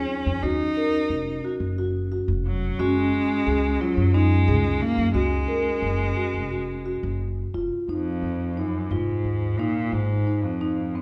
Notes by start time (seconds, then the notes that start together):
Already playing: C#4 G#4
0.26 F2
0.43 D#2 D#4 F#4
0.77 A#4
1.10 F1
1.45 F#4
1.60 F#1
1.78 F#4
2.12 F#4
2.28 F1
2.46 F#3
2.79 F#1 G#3 C#4 F#4
3.47 C#2 G#4
3.81 F#3 F4
3.97 F#2
4.14 G#3 D#4
4.48 C#2 G#4
4.81 A#3
4.98 F#2
5.14 C#2 G#3 F#4
5.48 A#4
5.82 F#1
6.16 F#4
6.34 F1
6.51 F#4
6.86 F#4
7.03 F#1
7.54 F1 F4
7.88 F2 D#4
8.22 F2
8.57 F#2 D#4
8.90 F1 G#2 F4
9.24 D#2
9.59 A#2 D#4
9.92 G#1 G#2
10.27 D#4
10.44 F2
10.61 D#4
10.95 F#2 C4